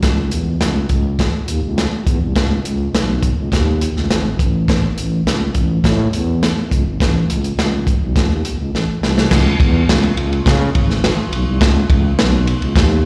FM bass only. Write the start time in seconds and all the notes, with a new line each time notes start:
0.03 C#2
0.32 E2
0.62 C#2
0.90 C#2
1.48 D#2
1.63 C#2
2.07 E2
2.22 C2
2.36 C#2
2.65 C#2
2.94 B1
3.37 C#2
3.52 D#2
3.96 C#2
4.10 G#1
4.39 A1
4.97 A1
5.26 C#2
5.55 A1
5.84 A2
6.12 E2
6.72 C#2
6.86 G#1
7.00 A1
7.29 C#2
7.58 C#2
8.02 B1
8.16 C#2
8.29 D#2
8.59 C#2
8.73 A1
9.01 C2
9.32 C#2
9.60 E2
9.88 C#2
10.17 C#2
10.46 C#3
10.75 G#1
11.32 B1
11.47 C2
11.61 C#2
11.89 C#2
12.18 B1
12.61 C#2
12.76 D#2